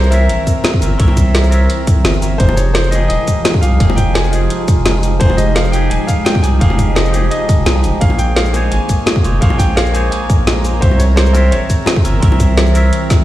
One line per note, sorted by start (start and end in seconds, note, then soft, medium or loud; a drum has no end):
0.00 0.28 C2 loud
0.00 2.37 E3 medium
0.00 0.10 C4 loud
0.00 0.11 A#4 medium
0.00 2.36 A#4 medium
0.00 0.12 C5 medium
0.00 0.10 C#5 medium
0.00 0.11 E5 loud
0.00 cabasa soft
0.10 0.79 C4 loud
0.10 0.80 A#4 medium
0.10 0.80 C#5 medium
0.10 2.00 E5 medium
0.10 closed hi-hat medium
0.10 high bongo medium
0.10 cabasa medium
0.14 0.81 E5 loud
0.29 0.38 A#1 medium
0.29 closed hi-hat medium
0.47 kick medium
0.47 closed hi-hat medium
0.47 cabasa medium
0.64 snare loud
0.64 closed hi-hat medium
0.64 high bongo medium
0.73 kick loud
0.81 0.98 G1 loud
0.81 0.96 C4 medium
0.81 0.98 A#4 medium
0.81 0.98 C#5 medium
0.81 0.98 E5 medium
0.81 closed hi-hat medium
0.81 cabasa medium
0.98 1.68 C2 loud
0.98 1.49 C4 medium
0.98 1.50 A#4 medium
0.98 1.51 C#5 medium
0.98 kick loud
0.98 closed hi-hat loud
1.02 1.51 E5 loud
1.08 high bongo medium
1.17 kick medium
1.17 closed hi-hat medium
1.17 cabasa medium
1.35 snare loud
1.35 closed hi-hat loud
1.35 cabasa soft
1.44 cabasa soft
1.50 2.19 C4 medium
1.50 2.20 A#4 medium
1.50 2.21 C#5 medium
1.50 closed hi-hat medium
1.50 cabasa medium
1.54 2.21 E5 loud
1.70 closed hi-hat medium
1.87 kick loud
1.87 closed hi-hat medium
1.87 cabasa medium
1.96 2.04 C2 medium
2.05 2.39 G1 medium
2.05 snare loud
2.05 closed hi-hat loud
2.05 high bongo medium
2.14 cabasa soft
2.21 2.37 C4 medium
2.21 2.38 A#4 medium
2.21 2.38 C#5 medium
2.21 2.39 E5 medium
2.21 closed hi-hat medium
2.21 cabasa medium
2.38 3.09 F1 loud
2.38 2.90 F3 loud
2.38 7.97 F3 medium
2.38 10.78 G#3 medium
2.38 2.90 D#4 medium
2.38 7.97 D#4 medium
2.38 2.91 G4 medium
2.38 2.57 C5 medium
2.38 5.18 F5 medium
2.38 kick loud
2.38 closed hi-hat medium
2.42 2.92 G#4 loud
2.49 high bongo medium
2.56 2.75 C#5 medium
2.56 closed hi-hat medium
2.56 cabasa medium
2.74 2.93 C5 medium
2.74 snare loud
2.74 closed hi-hat loud
2.84 cabasa soft
2.91 3.60 F3 medium
2.91 3.60 D#4 medium
2.91 3.61 G4 medium
2.91 3.07 D#5 medium
2.91 closed hi-hat medium
2.91 high bongo medium
2.91 cabasa medium
2.95 3.62 G#4 loud
3.08 3.18 D#1 medium
3.08 3.58 D#5 loud
3.08 closed hi-hat medium
3.28 kick medium
3.28 closed hi-hat medium
3.28 cabasa medium
3.45 snare loud
3.45 closed hi-hat loud
3.45 high bongo medium
3.54 kick loud
3.61 3.79 C2 loud
3.61 3.77 F3 medium
3.61 3.78 D#4 medium
3.61 3.79 G4 medium
3.61 3.79 G#4 medium
3.61 3.98 F5 loud
3.61 closed hi-hat medium
3.61 cabasa medium
3.78 4.49 F1 loud
3.78 4.30 F3 medium
3.78 4.31 D#4 medium
3.78 4.31 G4 medium
3.78 kick loud
3.78 closed hi-hat loud
3.82 4.32 G#4 loud
3.90 high bongo loud
3.96 4.13 G5 loud
3.96 kick medium
3.96 closed hi-hat medium
3.96 cabasa medium
4.14 4.64 G#5 loud
4.14 snare loud
4.14 closed hi-hat loud
4.24 cabasa soft
4.31 5.00 F3 loud
4.31 5.01 D#4 medium
4.31 5.02 F4 medium
4.31 closed hi-hat medium
4.31 cabasa medium
4.36 5.02 G#4 loud
4.50 closed hi-hat loud
4.68 kick loud
4.68 closed hi-hat medium
4.68 cabasa medium
4.77 5.19 F1 medium
4.86 snare loud
4.86 closed hi-hat loud
4.86 high bongo loud
5.02 5.18 F3 medium
5.02 5.19 D#4 medium
5.02 5.19 G4 medium
5.02 5.19 G#4 medium
5.02 closed hi-hat medium
5.02 cabasa medium
5.19 5.90 F1 loud
5.19 5.70 F3 medium
5.19 5.71 D#4 medium
5.19 5.72 G4 medium
5.19 5.38 C5 loud
5.19 kick loud
5.19 closed hi-hat loud
5.23 5.73 G#4 loud
5.30 high bongo medium
5.37 5.56 D#5 loud
5.37 closed hi-hat medium
5.37 cabasa medium
5.55 5.73 F5 loud
5.55 snare loud
5.55 closed hi-hat medium
5.65 cabasa soft
5.71 6.40 F3 loud
5.71 6.41 D#4 medium
5.71 6.42 G4 medium
5.71 5.91 G5 loud
5.71 closed hi-hat medium
5.71 cabasa medium
5.75 6.43 G#4 loud
5.90 5.99 D#1 medium
5.90 6.09 G#5 loud
5.90 closed hi-hat medium
6.07 6.24 F5 loud
6.07 kick medium
6.07 closed hi-hat medium
6.07 cabasa medium
6.25 6.44 G5 loud
6.25 snare loud
6.25 closed hi-hat medium
6.25 high bongo loud
6.35 kick loud
6.42 6.59 C2 loud
6.42 6.58 F3 medium
6.42 6.59 D#4 medium
6.42 6.59 G4 medium
6.42 6.60 G#4 medium
6.42 6.47 G#5 loud
6.42 closed hi-hat medium
6.42 cabasa medium
6.59 7.30 F1 loud
6.59 7.11 F3 loud
6.59 7.11 D#4 medium
6.59 7.12 G4 medium
6.59 6.97 F5 loud
6.59 kick loud
6.59 closed hi-hat medium
6.63 7.13 G#4 loud
6.70 high bongo medium
6.79 kick medium
6.79 closed hi-hat medium
6.79 cabasa medium
6.95 7.29 D#5 loud
6.95 snare loud
6.95 closed hi-hat medium
7.05 cabasa soft
7.12 7.73 F3 loud
7.12 7.73 D#4 medium
7.12 7.74 G4 medium
7.12 closed hi-hat medium
7.12 high bongo medium
7.12 cabasa medium
7.16 7.75 G#4 loud
7.31 7.80 D#5 loud
7.31 closed hi-hat medium
7.49 kick loud
7.49 closed hi-hat medium
7.49 cabasa medium
7.58 7.66 F1 medium
7.66 7.74 C2 loud
7.66 snare loud
7.66 closed hi-hat loud
7.66 high bongo loud
7.74 7.85 C2 medium
7.74 7.99 F3 medium
7.74 7.99 D#4 medium
7.74 8.00 G4 medium
7.74 8.00 G#4 medium
7.84 7.92 F1 loud
7.84 closed hi-hat medium
7.84 cabasa medium
7.99 8.70 A#1 loud
7.99 8.51 A#3 medium
7.99 8.52 G#4 medium
7.99 13.24 A#4 medium
7.99 8.52 C5 medium
7.99 8.19 F5 loud
7.99 kick loud
7.99 closed hi-hat medium
8.04 8.53 C#5 loud
8.10 high bongo medium
8.19 8.37 G5 loud
8.19 closed hi-hat medium
8.19 cabasa medium
8.36 8.54 F5 loud
8.36 snare loud
8.36 closed hi-hat medium
8.46 cabasa soft
8.52 9.21 A#3 loud
8.52 9.22 G#4 medium
8.52 9.23 C5 medium
8.52 8.70 G#5 loud
8.52 closed hi-hat medium
8.52 high bongo medium
8.52 cabasa medium
8.56 9.23 C#5 loud
8.71 8.80 G#1 medium
8.71 9.20 G#5 loud
8.71 closed hi-hat medium
8.89 kick medium
8.89 closed hi-hat medium
8.89 cabasa medium
9.06 snare loud
9.06 closed hi-hat medium
9.06 high bongo medium
9.16 kick loud
9.23 9.40 F1 loud
9.23 9.39 A#3 medium
9.23 9.40 G#4 medium
9.23 9.40 C5 medium
9.23 9.40 C#5 medium
9.23 closed hi-hat medium
9.23 cabasa medium
9.40 10.11 A#1 loud
9.40 9.91 A#3 loud
9.40 9.92 G#4 medium
9.40 9.93 C5 medium
9.40 9.54 F5 loud
9.40 kick loud
9.40 closed hi-hat medium
9.44 9.94 C#5 loud
9.50 9.59 G#5 medium
9.50 high bongo medium
9.58 9.75 G5 loud
9.58 kick medium
9.58 closed hi-hat medium
9.58 cabasa medium
9.76 9.93 F5 loud
9.76 snare loud
9.76 closed hi-hat medium
9.86 cabasa soft
9.93 10.62 A#3 loud
9.93 10.62 G#4 medium
9.93 10.63 C5 medium
9.93 10.10 G#5 loud
9.93 closed hi-hat medium
9.93 cabasa medium
9.97 10.64 C#5 loud
10.11 10.61 G#5 loud
10.11 closed hi-hat medium
10.30 kick loud
10.30 closed hi-hat medium
10.30 cabasa medium
10.39 10.81 A#1 medium
10.47 snare loud
10.47 closed hi-hat medium
10.47 high bongo medium
10.64 10.80 A#3 medium
10.64 10.80 G#4 medium
10.64 10.80 C5 medium
10.64 10.81 C#5 medium
10.64 closed hi-hat medium
10.64 cabasa medium
10.80 11.51 C2 loud
10.80 13.24 E3 medium
10.80 11.31 C4 loud
10.80 11.32 A#4 medium
10.80 11.00 C5 medium
10.80 11.33 C#5 medium
10.80 11.34 E5 loud
10.80 kick loud
10.80 closed hi-hat loud
10.91 high bongo medium
10.99 11.04 C#5 medium
10.99 closed hi-hat medium
10.99 cabasa medium
11.16 11.32 C5 medium
11.16 snare loud
11.16 closed hi-hat medium
11.26 cabasa soft
11.33 12.02 C4 loud
11.33 12.03 A#4 medium
11.33 11.52 C5 medium
11.33 12.03 C#5 loud
11.33 closed hi-hat medium
11.33 high bongo medium
11.33 cabasa medium
11.37 12.04 E5 loud
11.51 11.60 A#1 medium
11.51 13.23 C#5 medium
11.51 closed hi-hat medium
11.70 kick medium
11.70 closed hi-hat medium
11.70 cabasa medium
11.86 snare loud
11.86 closed hi-hat medium
11.86 high bongo loud
11.96 kick loud
12.04 12.21 G1 loud
12.04 12.19 C4 medium
12.04 12.20 A#4 medium
12.04 12.21 C#5 medium
12.04 12.21 E5 medium
12.04 closed hi-hat medium
12.04 cabasa medium
12.20 12.91 C2 loud
12.20 12.72 C4 medium
12.20 12.73 A#4 medium
12.20 12.73 C#5 medium
12.20 kick loud
12.20 closed hi-hat loud
12.25 12.74 E5 loud
12.32 high bongo medium
12.40 kick medium
12.40 closed hi-hat medium
12.40 cabasa medium
12.57 snare loud
12.57 closed hi-hat medium
12.57 cabasa soft
12.66 cabasa soft
12.73 13.24 C4 loud
12.73 13.24 A#4 medium
12.73 13.24 C#5 medium
12.73 closed hi-hat medium
12.73 cabasa medium
12.77 13.24 E5 loud
12.93 closed hi-hat medium
13.10 kick loud
13.10 snare medium
13.10 closed hi-hat medium
13.10 cabasa medium
13.19 13.24 C2 medium